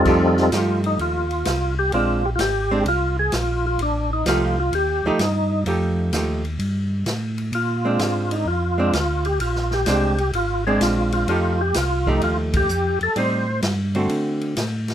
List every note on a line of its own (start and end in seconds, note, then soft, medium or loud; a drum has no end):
0.00 0.50 G3 medium
0.00 0.50 C4 medium
0.00 0.50 D#4 medium
0.00 0.50 A4 medium
0.05 0.51 F2 medium
0.05 0.35 F3 soft
0.05 0.35 A3 medium
0.05 0.35 D#4 medium
0.05 0.81 F4 medium
0.05 0.35 G4 medium
0.05 kick medium
0.05 crash medium
0.37 snare soft
0.52 0.98 G2 medium
0.52 1.25 F3 soft
0.52 1.25 A3 soft
0.52 1.25 D#4 medium
0.52 1.25 G4 medium
0.52 snare medium
0.52 hi-hat pedal medium
0.52 ride medium
0.84 0.99 D#4 medium
0.84 ride soft
0.99 1.44 D#2 medium
0.99 1.75 F4 medium
0.99 ride soft
1.31 ride soft
1.45 1.91 C2 medium
1.45 snare medium
1.45 hi-hat pedal medium
1.45 ride medium
1.79 1.92 G4 medium
1.92 2.38 A#1 medium
1.92 2.21 G#3 soft
1.92 2.22 C4 medium
1.92 2.22 D4 medium
1.92 2.26 F4 medium
1.92 ride soft
2.25 2.30 G4 medium
2.36 2.84 G#1 medium
2.36 2.40 F4 medium
2.36 snare medium
2.36 hi-hat pedal medium
2.36 ride medium
2.40 2.83 G4 medium
2.71 2.85 G#3 medium
2.71 2.85 C4 medium
2.71 2.85 D4 medium
2.85 3.31 C2 medium
2.85 3.17 F4 medium
2.85 ride medium
3.19 3.34 G#4 medium
3.32 3.78 A#1 medium
3.32 3.66 F4 medium
3.32 snare medium
3.32 hi-hat pedal medium
3.32 ride medium
3.67 3.81 F4 medium
3.79 4.24 A1 medium
3.79 ride medium
3.83 4.11 D4 medium
4.13 4.26 D#4 medium
4.26 4.71 C2 medium
4.26 4.55 F3 medium
4.26 4.55 A3 medium
4.26 4.55 D#4 medium
4.26 4.59 F4 medium
4.26 4.56 G4 medium
4.26 snare medium
4.26 hi-hat pedal medium
4.26 ride medium
4.60 4.74 F4 medium
4.72 5.02 D#2 medium
4.72 5.07 G4 loud
4.72 ride medium
5.04 5.11 D#2 soft
5.04 5.19 F3 medium
5.04 5.19 A3 medium
5.04 5.19 D#4 medium
5.04 5.19 G4 medium
5.18 5.64 G2 medium
5.18 5.64 D#4 medium
5.18 snare medium
5.18 hi-hat pedal medium
5.18 ride medium
5.66 6.11 F2 medium
5.66 6.12 F3 medium
5.66 6.12 A3 medium
5.66 6.12 D#4 medium
5.66 6.12 G4 medium
5.66 ride medium
6.12 6.58 D#2 medium
6.12 6.42 F3 soft
6.12 6.42 A3 soft
6.12 6.42 D#4 soft
6.12 6.42 G4 soft
6.12 snare medium
6.12 hi-hat pedal medium
6.12 ride medium
6.45 ride soft
6.59 7.05 G2 medium
6.59 ride medium
7.06 7.51 A2 medium
7.06 snare medium
7.06 hi-hat pedal soft
7.06 ride medium
7.38 ride soft
7.52 7.98 A#2 medium
7.52 8.35 F4 medium
7.52 ride medium
7.85 8.44 G#3 medium
7.85 8.44 C4 medium
7.85 8.45 D4 medium
7.99 8.45 G#2 medium
7.99 snare medium
7.99 hi-hat pedal medium
7.99 ride medium
8.31 8.47 D#4 medium
8.31 ride medium
8.46 8.92 F2 medium
8.46 8.94 F4 medium
8.78 8.92 G#3 medium
8.78 8.93 C4 medium
8.78 8.93 D4 medium
8.93 9.39 D2 medium
8.93 9.27 F4 medium
8.93 snare medium
8.93 hi-hat pedal soft
8.93 ride medium
9.25 9.40 G4 medium
9.25 ride soft
9.39 9.85 A#1 medium
9.39 9.74 F4 medium
9.39 ride medium
9.55 snare soft
9.71 9.87 G4 medium
9.71 snare soft
9.86 10.32 C2 medium
9.86 10.16 G#3 medium
9.86 10.16 C4 medium
9.86 10.17 D4 medium
9.86 10.31 G4 medium
9.86 snare medium
9.86 hi-hat pedal medium
9.86 ride medium
10.18 ride soft
10.33 10.79 G#1 medium
10.33 10.64 F4 medium
10.33 ride medium
10.67 11.25 G#3 medium
10.67 11.26 C4 medium
10.67 11.26 D4 medium
10.67 10.82 G#4 medium
10.80 11.26 A#1 medium
10.80 11.12 F4 medium
10.80 snare medium
10.80 hi-hat pedal medium
10.80 ride medium
11.12 11.28 F4 medium
11.12 ride soft
11.28 11.73 F2 medium
11.28 11.57 F3 soft
11.28 11.57 A3 medium
11.28 11.57 D#4 medium
11.28 11.61 F4 medium
11.28 11.58 G4 medium
11.28 ride medium
11.61 11.76 G4 medium
11.74 12.21 C2 medium
11.74 12.09 F4 medium
11.74 snare medium
11.74 hi-hat pedal medium
11.74 ride medium
12.07 12.66 F3 medium
12.07 12.66 A3 medium
12.07 12.66 D#4 medium
12.07 12.22 D#4 medium
12.07 12.66 G4 medium
12.07 kick soft
12.21 12.67 D#2 medium
12.21 12.38 F4 medium
12.21 ride medium
12.54 12.99 G4 medium
12.54 kick medium
12.54 ride medium
12.69 12.99 F2 medium
12.69 hi-hat pedal medium
13.01 13.08 F2 soft
13.01 13.17 A4 loud
13.01 ride soft
13.16 13.61 A2 medium
13.16 13.45 G3 medium
13.16 13.45 C4 medium
13.16 13.45 D#4 medium
13.16 13.61 C5 medium
13.16 ride medium
13.62 14.08 G2 medium
13.62 snare medium
13.62 hi-hat pedal medium
13.62 ride medium
13.95 14.54 D3 medium
13.95 14.54 A3 medium
13.95 14.54 C4 medium
13.95 14.54 F#4 medium
13.95 ride soft
14.09 14.55 D3 medium
14.09 ride medium
14.41 ride soft
14.57 14.94 A2 medium
14.57 snare medium
14.57 hi-hat pedal soft
14.57 ride medium
14.88 snare soft
14.88 ride soft